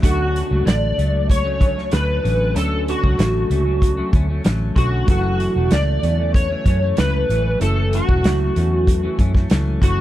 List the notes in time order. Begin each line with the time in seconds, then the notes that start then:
0.01 D2 D3 F#3 A3 C#4 D4 F#4, kick, closed hi-hat
0.05 A4
0.36 closed hi-hat
0.50 C#2 F#3 A3 C#4
0.65 A1 D3 F#3 A3 D5, snare, closed hi-hat
0.98 C#2 F#3 A3, closed hi-hat
1.30 C#5, kick, closed hi-hat
1.44 F#3 A3 C#4
1.59 D3 F#3 A3 C#4, kick, closed hi-hat
1.75 F#3 A3 C#4, snare
1.92 D2 D3 F#3 A3 C#4 B4, snare, closed hi-hat
2.22 A1 D3 F#3 A3 C#4, closed hi-hat
2.54 D2 D3 F#3 A3 C#4 D4 A4, closed hi-hat
2.58 A4
2.88 F#4, closed hi-hat
3.02 C#2 F#3 A3 C#4, kick
3.17 A1 D3 F#3 A3 C#4, snare, closed hi-hat
3.50 C#2 D3 F#3 A3 C#4, closed hi-hat
3.65 F#3 A3 C#4
3.82 kick, closed hi-hat
3.97 F#3 A3 C#4
4.13 D2 D3 F#3 A3 C#4, kick, closed hi-hat
4.29 F#3 A3 C#4
4.44 A1 D3 F#3 A3 C#4, snare, closed hi-hat
4.76 B1 D3 F#3 A3 C#4 F#4, kick, closed hi-hat
5.06 F#1 F#2 C#3 E3 F#3 A3 C#4 E4 F#4, kick, closed hi-hat
5.11 A4
5.40 closed hi-hat
5.56 E1 E3 A3 C#4
5.71 C#2 F#2 E3 A3 D5, snare, closed hi-hat
6.02 E2 F#2 E3 A3 C#4, closed hi-hat
6.18 E3 A3 C#4
6.34 C#5, kick, closed hi-hat
6.50 E3 A3 C#4
6.66 F#2 E3 A3 C#4, kick, closed hi-hat
6.82 E3 A3 C#4
6.96 C#2 F#2 E3 A3 C#4 B4, snare, closed hi-hat
7.29 A1 F#2 E3 A3 C#4, closed hi-hat
7.58 F#1 F#2 E3 F#3 A3 C#4 E4, closed hi-hat
7.62 A4
7.93 F#4, closed hi-hat
8.08 E1 E3 A3 C#4, kick
8.24 C#2 F#2 E3 A3 C#4, snare, closed hi-hat
8.56 E2 F#2 E3 A3 C#4, closed hi-hat
8.87 kick, closed hi-hat
9.03 E3 A3 C#4
9.18 F#2 E3 A3 C#4, kick, closed hi-hat
9.35 E3 A3 C#4, kick, snare
9.50 C#2 F#2 E3 A3 C#4, snare, closed hi-hat
9.81 F#1 F#2 E3 A3 C#4 F#4, kick, closed hi-hat